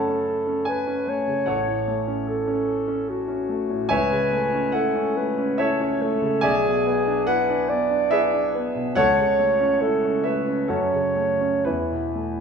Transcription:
Already playing: grand piano F#2 C#3 A3 C#4 A4 C#5 F#5 A5 B5, clarinet A4
0.08 grand piano C#4
0.27 grand piano A4
0.46 grand piano C#4
0.65 grand piano A4 G#5, clarinet B4
0.87 grand piano C#4
1.07 grand piano A3, clarinet C#5
1.28 grand piano C#3
1.46 grand piano A1 A4 C#5 F#5
1.67 grand piano A2
1.88 grand piano A3
2.07 grand piano C#4
2.27 grand piano A4, clarinet A4
2.47 grand piano C#4
2.67 grand piano A4
2.87 grand piano C#4
3.08 clarinet F#4, grand piano A4
3.28 grand piano C#4
3.49 grand piano A3
3.70 grand piano A2
3.89 grand piano C#2 C#5 E5 G#5, clarinet B4
4.11 grand piano C#3
4.32 grand piano A3
4.53 grand piano C#4
4.72 grand piano E4 F#5, clarinet A4
4.96 grand piano C#4
5.17 grand piano A3, clarinet B4
5.38 grand piano C#4
5.58 grand piano E4 A4 C#5 E5, clarinet C#5
5.81 grand piano C#4
6.01 grand piano A3, clarinet A4
6.22 grand piano C#3
6.41 grand piano B1 D5 E5 G#5, clarinet G#4
6.65 grand piano B2
6.86 grand piano B3
7.07 grand piano D4
7.27 grand piano E4 F#5, clarinet B4
7.49 grand piano D4
7.70 grand piano B3, clarinet D5
7.90 grand piano D4
8.11 grand piano E4 G#4 B4 E5
8.33 grand piano D4
8.54 grand piano B3
8.75 grand piano B2
8.95 grand piano C#2 A4 C#5 F#5, clarinet C#5
9.18 grand piano C#3
9.39 grand piano A3
9.60 grand piano C#4
9.81 grand piano E4, clarinet A4
10.04 grand piano C#4
10.24 grand piano A3 E5, clarinet B4
10.47 grand piano C#4
10.68 grand piano F#2 C#4 F#4 A4, clarinet C#5
10.93 grand piano C#3
11.16 grand piano A3
11.41 grand piano C#4
11.65 grand piano E2 E4 B4, clarinet E4
11.91 grand piano B2
12.15 grand piano A3

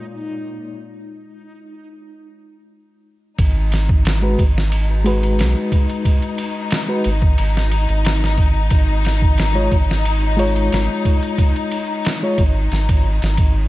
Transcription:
Already playing: string section A#2, reed electric piano G#3 F4 C#5, synth texture D#4
3.39 analog synth bass G#1, string section D#4, kick, ride
3.72 snare, ride
3.89 kick
4.05 snare, ride
4.22 reed electric piano G#3 F#4 B4
4.39 analog synth bass G#1, kick, ride
4.58 snare
4.72 ride
5.04 reed electric piano G#3 F#4 B4, ride
5.23 ride
5.39 analog synth bass B1, snare, ride
5.72 kick, ride
5.89 ride
6.05 kick, ride
6.22 ride
6.38 ride
6.71 snare, ride
6.88 reed electric piano G#3 F#4 B4
7.04 analog synth bass G#1, ride
7.22 kick
7.38 analog synth bass G#1, ride
7.57 snare
7.71 ride
7.89 analog synth bass G#1, ride
8.05 snare, ride
8.24 snare
8.38 kick, ride
8.71 analog synth bass G#1, kick, ride
9.05 snare, ride
9.22 kick
9.38 snare, ride
9.55 reed electric piano G#3 F4 C#5
9.72 analog synth bass G#1, kick, ride
9.91 snare
10.05 ride
10.37 reed electric piano G#3 F4 C#5, ride
10.56 ride
10.72 analog synth bass G#1, snare, ride
11.05 kick, ride
11.22 ride
11.38 kick, ride
11.56 ride
11.71 ride
12.05 snare, ride
12.22 reed electric piano G#3 F4 C#5
12.38 analog synth bass G#1, kick, ride
12.72 analog synth bass G#1, snare, ride
12.89 kick, ride
13.22 analog synth bass G#1, snare, ride
13.37 kick, ride

